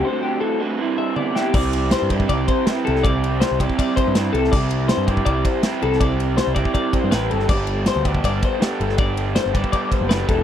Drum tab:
CC |----------------|x---------------|----------------|x---------------|
RD |----------------|--x-x-x-x-x-x-x-|x-x-x-x-x-x-x-x-|--x-x-x-x-x-x-x-|
SD |--------------o-|----o-------o--o|----o-------o--o|----o-------o--o|
T1 |------------o---|----------------|----------------|----------------|
BD |----------------|o-----ooo-o-----|o-----ooo-o-----|o-----ooo-o-----|

CC |----------------|x---------------|----------------|
RD |x-x-x-x-x-x-x-x-|--x-x-x-x-x-x-x-|x-x-x-x-x-x-x-x-|
SD |----o-------o--o|----o-------o--o|----o-------o---|
T1 |----------------|----------------|----------------|
BD |o-----ooo-o-----|o-----ooo-o-----|o-----ooo-o---o-|